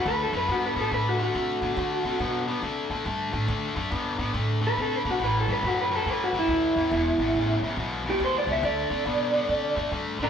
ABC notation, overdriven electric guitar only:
X:1
M:4/4
L:1/8
Q:"Swing" 1/4=140
K:D
V:1 name="Overdriven electric guitar" clef=bass
[D,A,] [D,A,] [D,B,] [D,B,] [D,A,] [D,A,] [D,A,] [D,A,] | [D,A,] [D,A,] [D,B,] [D,B,] [D,A,] [D,A,] [D,A,] [D,A,] | [D,A,] [D,A,] [D,B,] [D,B,] [D,A,] [D,A,] [D,A,] [D,A,] | [A,,E,] [A,,E,] [A,,F,] [A,,F,] [A,,E,] [A,,E,] [A,,E,] [A,,E,] |
[E,,B,,] [E,,B,,] [E,,C,] [E,,C,] [E,,B,,] [E,,B,,] [E,,B,,] [E,,B,,] | [D,A,] [D,A,] [D,B,] [D,B,] [D,A,] [D,A,] [D,A,] [D,A,] |]